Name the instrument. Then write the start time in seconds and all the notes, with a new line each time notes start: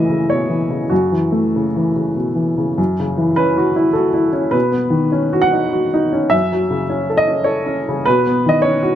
upright piano
Already playing: F#2 C#3 E3 A3 D#5 E5
0.09 C#3
0.30 B2 C#5
0.49 E3
0.70 C#3
0.90 F#2 F#4
1.12 E3
1.32 A3
1.56 C#3
1.76 E3
1.96 C#3
2.16 B2
2.35 E3
2.58 C#3
2.78 F#2
3.00 C#3
3.17 E3
3.36 C#4 B4
3.57 F#4
3.76 E4
3.93 F#4 A4
4.14 E4
4.33 C#4
4.51 B2 B4
4.72 B3
4.90 D#3
5.12 C#4
5.33 F#4
5.42 F#5
5.52 D#4
5.73 F#4
5.94 D#4
6.13 C#4
6.30 F#2 E5
6.52 F#3
6.70 C#3
6.90 C#4
7.10 A4
7.17 D#5
7.28 C#4
7.44 A4 C#5
7.66 C#4
7.89 C#3
8.06 B2 B4
8.27 B3
8.46 D#3 D#5
8.62 C#4 C#5
8.83 F#4